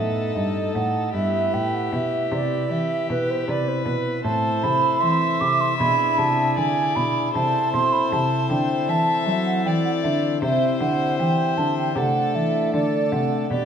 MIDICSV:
0, 0, Header, 1, 5, 480
1, 0, Start_track
1, 0, Tempo, 776197
1, 707, Time_signature, 4, 2, 24, 8
1, 5021, Tempo, 770218
1, 8468, End_track
2, 0, Start_track
2, 0, Title_t, "Flute"
2, 0, Program_c, 0, 73
2, 0, Note_on_c, 0, 76, 65
2, 220, Note_off_c, 0, 76, 0
2, 225, Note_on_c, 0, 75, 63
2, 458, Note_off_c, 0, 75, 0
2, 462, Note_on_c, 0, 78, 62
2, 701, Note_off_c, 0, 78, 0
2, 712, Note_on_c, 0, 76, 63
2, 951, Note_on_c, 0, 79, 67
2, 960, Note_off_c, 0, 76, 0
2, 1084, Note_on_c, 0, 78, 62
2, 1093, Note_off_c, 0, 79, 0
2, 1195, Note_off_c, 0, 78, 0
2, 1199, Note_on_c, 0, 76, 64
2, 1450, Note_on_c, 0, 74, 66
2, 1459, Note_off_c, 0, 76, 0
2, 1678, Note_on_c, 0, 76, 67
2, 1687, Note_off_c, 0, 74, 0
2, 1915, Note_off_c, 0, 76, 0
2, 1918, Note_on_c, 0, 71, 63
2, 2043, Note_on_c, 0, 72, 60
2, 2052, Note_off_c, 0, 71, 0
2, 2152, Note_off_c, 0, 72, 0
2, 2155, Note_on_c, 0, 74, 73
2, 2278, Note_on_c, 0, 72, 60
2, 2287, Note_off_c, 0, 74, 0
2, 2385, Note_off_c, 0, 72, 0
2, 2389, Note_on_c, 0, 71, 57
2, 2617, Note_off_c, 0, 71, 0
2, 2621, Note_on_c, 0, 81, 69
2, 2865, Note_on_c, 0, 83, 74
2, 2874, Note_off_c, 0, 81, 0
2, 3100, Note_on_c, 0, 84, 81
2, 3110, Note_off_c, 0, 83, 0
2, 3344, Note_on_c, 0, 86, 76
2, 3353, Note_off_c, 0, 84, 0
2, 3468, Note_on_c, 0, 84, 67
2, 3477, Note_off_c, 0, 86, 0
2, 3576, Note_off_c, 0, 84, 0
2, 3580, Note_on_c, 0, 83, 73
2, 3824, Note_on_c, 0, 81, 73
2, 3833, Note_off_c, 0, 83, 0
2, 4068, Note_on_c, 0, 80, 75
2, 4077, Note_off_c, 0, 81, 0
2, 4303, Note_on_c, 0, 83, 74
2, 4312, Note_off_c, 0, 80, 0
2, 4538, Note_off_c, 0, 83, 0
2, 4542, Note_on_c, 0, 81, 71
2, 4778, Note_off_c, 0, 81, 0
2, 4782, Note_on_c, 0, 84, 77
2, 4901, Note_on_c, 0, 83, 75
2, 4911, Note_off_c, 0, 84, 0
2, 5016, Note_off_c, 0, 83, 0
2, 5020, Note_on_c, 0, 81, 75
2, 5255, Note_off_c, 0, 81, 0
2, 5259, Note_on_c, 0, 79, 74
2, 5507, Note_on_c, 0, 81, 81
2, 5516, Note_off_c, 0, 79, 0
2, 5733, Note_off_c, 0, 81, 0
2, 5737, Note_on_c, 0, 76, 73
2, 5774, Note_off_c, 0, 76, 0
2, 5860, Note_on_c, 0, 78, 67
2, 5972, Note_off_c, 0, 78, 0
2, 5975, Note_on_c, 0, 79, 80
2, 6013, Note_off_c, 0, 79, 0
2, 6101, Note_on_c, 0, 78, 67
2, 6138, Note_off_c, 0, 78, 0
2, 6214, Note_on_c, 0, 76, 72
2, 6455, Note_off_c, 0, 76, 0
2, 6458, Note_on_c, 0, 76, 72
2, 6691, Note_off_c, 0, 76, 0
2, 6695, Note_on_c, 0, 78, 73
2, 6931, Note_off_c, 0, 78, 0
2, 6935, Note_on_c, 0, 79, 81
2, 7175, Note_on_c, 0, 81, 71
2, 7184, Note_off_c, 0, 79, 0
2, 7299, Note_off_c, 0, 81, 0
2, 7302, Note_on_c, 0, 79, 73
2, 7417, Note_off_c, 0, 79, 0
2, 7420, Note_on_c, 0, 78, 81
2, 7660, Note_on_c, 0, 76, 71
2, 7669, Note_off_c, 0, 78, 0
2, 7899, Note_off_c, 0, 76, 0
2, 7903, Note_on_c, 0, 74, 77
2, 8139, Note_on_c, 0, 78, 75
2, 8148, Note_off_c, 0, 74, 0
2, 8380, Note_off_c, 0, 78, 0
2, 8383, Note_on_c, 0, 74, 75
2, 8468, Note_off_c, 0, 74, 0
2, 8468, End_track
3, 0, Start_track
3, 0, Title_t, "Violin"
3, 0, Program_c, 1, 40
3, 0, Note_on_c, 1, 69, 60
3, 685, Note_off_c, 1, 69, 0
3, 707, Note_on_c, 1, 67, 56
3, 1653, Note_off_c, 1, 67, 0
3, 1672, Note_on_c, 1, 67, 56
3, 2159, Note_on_c, 1, 71, 61
3, 2168, Note_off_c, 1, 67, 0
3, 2626, Note_off_c, 1, 71, 0
3, 2630, Note_on_c, 1, 72, 59
3, 3099, Note_off_c, 1, 72, 0
3, 3107, Note_on_c, 1, 76, 70
3, 4045, Note_off_c, 1, 76, 0
3, 4066, Note_on_c, 1, 74, 64
3, 4535, Note_off_c, 1, 74, 0
3, 4542, Note_on_c, 1, 72, 69
3, 5501, Note_on_c, 1, 76, 69
3, 5510, Note_off_c, 1, 72, 0
3, 5989, Note_on_c, 1, 74, 62
3, 5998, Note_off_c, 1, 76, 0
3, 6458, Note_off_c, 1, 74, 0
3, 6462, Note_on_c, 1, 72, 69
3, 7420, Note_on_c, 1, 69, 66
3, 7430, Note_off_c, 1, 72, 0
3, 7901, Note_off_c, 1, 69, 0
3, 7904, Note_on_c, 1, 69, 60
3, 8375, Note_off_c, 1, 69, 0
3, 8392, Note_on_c, 1, 67, 60
3, 8468, Note_off_c, 1, 67, 0
3, 8468, End_track
4, 0, Start_track
4, 0, Title_t, "Pipe organ"
4, 0, Program_c, 2, 19
4, 0, Note_on_c, 2, 45, 44
4, 0, Note_on_c, 2, 59, 38
4, 0, Note_on_c, 2, 63, 35
4, 0, Note_on_c, 2, 69, 38
4, 194, Note_off_c, 2, 59, 0
4, 197, Note_off_c, 2, 45, 0
4, 219, Note_on_c, 2, 43, 44
4, 438, Note_off_c, 2, 43, 0
4, 459, Note_on_c, 2, 45, 43
4, 674, Note_off_c, 2, 63, 0
4, 677, Note_off_c, 2, 69, 0
4, 677, Note_on_c, 2, 59, 36
4, 680, Note_off_c, 2, 45, 0
4, 685, Note_on_c, 2, 64, 37
4, 693, Note_on_c, 2, 71, 39
4, 701, Note_on_c, 2, 43, 41
4, 922, Note_off_c, 2, 43, 0
4, 927, Note_off_c, 2, 59, 0
4, 944, Note_on_c, 2, 45, 45
4, 1164, Note_off_c, 2, 45, 0
4, 1182, Note_on_c, 2, 47, 42
4, 1403, Note_off_c, 2, 47, 0
4, 1427, Note_on_c, 2, 48, 40
4, 1646, Note_off_c, 2, 48, 0
4, 1666, Note_on_c, 2, 52, 44
4, 1885, Note_off_c, 2, 52, 0
4, 1908, Note_on_c, 2, 47, 45
4, 2126, Note_off_c, 2, 47, 0
4, 2152, Note_on_c, 2, 48, 43
4, 2368, Note_off_c, 2, 48, 0
4, 2386, Note_on_c, 2, 47, 47
4, 2592, Note_off_c, 2, 64, 0
4, 2597, Note_on_c, 2, 60, 38
4, 2599, Note_off_c, 2, 71, 0
4, 2604, Note_off_c, 2, 47, 0
4, 2605, Note_on_c, 2, 64, 39
4, 2614, Note_on_c, 2, 69, 38
4, 2623, Note_on_c, 2, 45, 46
4, 2842, Note_off_c, 2, 45, 0
4, 2863, Note_on_c, 2, 48, 47
4, 3081, Note_off_c, 2, 48, 0
4, 3103, Note_on_c, 2, 52, 43
4, 3320, Note_off_c, 2, 52, 0
4, 3338, Note_on_c, 2, 48, 47
4, 3545, Note_off_c, 2, 60, 0
4, 3548, Note_off_c, 2, 64, 0
4, 3553, Note_off_c, 2, 69, 0
4, 3553, Note_on_c, 2, 62, 38
4, 3557, Note_off_c, 2, 48, 0
4, 3561, Note_on_c, 2, 64, 40
4, 3571, Note_on_c, 2, 68, 41
4, 3581, Note_on_c, 2, 47, 42
4, 3799, Note_off_c, 2, 47, 0
4, 3822, Note_on_c, 2, 48, 49
4, 4040, Note_off_c, 2, 48, 0
4, 4062, Note_on_c, 2, 50, 45
4, 4279, Note_off_c, 2, 50, 0
4, 4302, Note_on_c, 2, 47, 49
4, 4503, Note_off_c, 2, 62, 0
4, 4507, Note_off_c, 2, 64, 0
4, 4512, Note_off_c, 2, 68, 0
4, 4514, Note_on_c, 2, 60, 40
4, 4519, Note_off_c, 2, 47, 0
4, 4525, Note_on_c, 2, 64, 41
4, 4535, Note_on_c, 2, 69, 40
4, 4542, Note_on_c, 2, 48, 45
4, 4759, Note_off_c, 2, 48, 0
4, 4783, Note_on_c, 2, 47, 48
4, 4999, Note_off_c, 2, 47, 0
4, 5020, Note_on_c, 2, 48, 47
4, 5238, Note_off_c, 2, 48, 0
4, 5261, Note_on_c, 2, 50, 45
4, 5478, Note_off_c, 2, 50, 0
4, 5495, Note_on_c, 2, 52, 45
4, 5715, Note_off_c, 2, 52, 0
4, 5738, Note_on_c, 2, 54, 54
4, 5956, Note_off_c, 2, 54, 0
4, 5978, Note_on_c, 2, 52, 51
4, 6197, Note_off_c, 2, 52, 0
4, 6219, Note_on_c, 2, 50, 47
4, 6425, Note_off_c, 2, 60, 0
4, 6430, Note_off_c, 2, 64, 0
4, 6435, Note_off_c, 2, 69, 0
4, 6437, Note_on_c, 2, 60, 41
4, 6438, Note_off_c, 2, 50, 0
4, 6447, Note_on_c, 2, 64, 41
4, 6456, Note_on_c, 2, 67, 40
4, 6466, Note_on_c, 2, 48, 49
4, 6682, Note_off_c, 2, 48, 0
4, 6709, Note_on_c, 2, 50, 52
4, 6923, Note_off_c, 2, 50, 0
4, 6944, Note_on_c, 2, 52, 49
4, 7160, Note_off_c, 2, 52, 0
4, 7185, Note_on_c, 2, 50, 47
4, 7384, Note_off_c, 2, 60, 0
4, 7389, Note_off_c, 2, 64, 0
4, 7393, Note_off_c, 2, 67, 0
4, 7394, Note_on_c, 2, 57, 41
4, 7399, Note_off_c, 2, 50, 0
4, 7404, Note_on_c, 2, 62, 42
4, 7415, Note_on_c, 2, 69, 42
4, 7422, Note_on_c, 2, 48, 47
4, 7638, Note_off_c, 2, 48, 0
4, 7661, Note_on_c, 2, 52, 52
4, 7878, Note_off_c, 2, 52, 0
4, 7898, Note_on_c, 2, 50, 52
4, 8117, Note_off_c, 2, 50, 0
4, 8138, Note_on_c, 2, 48, 50
4, 8344, Note_off_c, 2, 57, 0
4, 8350, Note_off_c, 2, 62, 0
4, 8355, Note_off_c, 2, 69, 0
4, 8356, Note_off_c, 2, 48, 0
4, 8366, Note_on_c, 2, 62, 43
4, 8375, Note_on_c, 2, 71, 44
4, 8384, Note_on_c, 2, 47, 48
4, 8468, Note_off_c, 2, 47, 0
4, 8468, Note_off_c, 2, 62, 0
4, 8468, Note_off_c, 2, 71, 0
4, 8468, End_track
5, 0, Start_track
5, 0, Title_t, "Cello"
5, 0, Program_c, 3, 42
5, 0, Note_on_c, 3, 45, 52
5, 204, Note_off_c, 3, 45, 0
5, 221, Note_on_c, 3, 43, 53
5, 446, Note_off_c, 3, 43, 0
5, 466, Note_on_c, 3, 45, 52
5, 691, Note_off_c, 3, 45, 0
5, 706, Note_on_c, 3, 43, 59
5, 932, Note_off_c, 3, 43, 0
5, 951, Note_on_c, 3, 45, 54
5, 1175, Note_off_c, 3, 45, 0
5, 1190, Note_on_c, 3, 47, 59
5, 1415, Note_off_c, 3, 47, 0
5, 1433, Note_on_c, 3, 48, 52
5, 1656, Note_off_c, 3, 48, 0
5, 1670, Note_on_c, 3, 52, 61
5, 1894, Note_off_c, 3, 52, 0
5, 1916, Note_on_c, 3, 47, 56
5, 2138, Note_off_c, 3, 47, 0
5, 2151, Note_on_c, 3, 48, 57
5, 2375, Note_off_c, 3, 48, 0
5, 2385, Note_on_c, 3, 47, 56
5, 2611, Note_off_c, 3, 47, 0
5, 2628, Note_on_c, 3, 45, 60
5, 2851, Note_off_c, 3, 45, 0
5, 2869, Note_on_c, 3, 48, 61
5, 3092, Note_off_c, 3, 48, 0
5, 3109, Note_on_c, 3, 52, 60
5, 3331, Note_off_c, 3, 52, 0
5, 3348, Note_on_c, 3, 48, 59
5, 3570, Note_off_c, 3, 48, 0
5, 3589, Note_on_c, 3, 47, 64
5, 3811, Note_off_c, 3, 47, 0
5, 3824, Note_on_c, 3, 48, 56
5, 4048, Note_off_c, 3, 48, 0
5, 4066, Note_on_c, 3, 50, 62
5, 4288, Note_off_c, 3, 50, 0
5, 4305, Note_on_c, 3, 47, 62
5, 4528, Note_off_c, 3, 47, 0
5, 4548, Note_on_c, 3, 48, 64
5, 4770, Note_off_c, 3, 48, 0
5, 4786, Note_on_c, 3, 47, 62
5, 5008, Note_off_c, 3, 47, 0
5, 5024, Note_on_c, 3, 48, 63
5, 5247, Note_off_c, 3, 48, 0
5, 5258, Note_on_c, 3, 50, 61
5, 5484, Note_off_c, 3, 50, 0
5, 5496, Note_on_c, 3, 52, 63
5, 5722, Note_off_c, 3, 52, 0
5, 5737, Note_on_c, 3, 54, 58
5, 5963, Note_off_c, 3, 54, 0
5, 5978, Note_on_c, 3, 52, 66
5, 6204, Note_off_c, 3, 52, 0
5, 6222, Note_on_c, 3, 50, 59
5, 6447, Note_off_c, 3, 50, 0
5, 6454, Note_on_c, 3, 48, 65
5, 6683, Note_off_c, 3, 48, 0
5, 6695, Note_on_c, 3, 50, 64
5, 6922, Note_off_c, 3, 50, 0
5, 6939, Note_on_c, 3, 52, 64
5, 7164, Note_off_c, 3, 52, 0
5, 7177, Note_on_c, 3, 50, 58
5, 7403, Note_off_c, 3, 50, 0
5, 7414, Note_on_c, 3, 48, 72
5, 7641, Note_off_c, 3, 48, 0
5, 7657, Note_on_c, 3, 52, 59
5, 7884, Note_off_c, 3, 52, 0
5, 7899, Note_on_c, 3, 50, 65
5, 8125, Note_off_c, 3, 50, 0
5, 8142, Note_on_c, 3, 48, 62
5, 8366, Note_off_c, 3, 48, 0
5, 8379, Note_on_c, 3, 47, 65
5, 8468, Note_off_c, 3, 47, 0
5, 8468, End_track
0, 0, End_of_file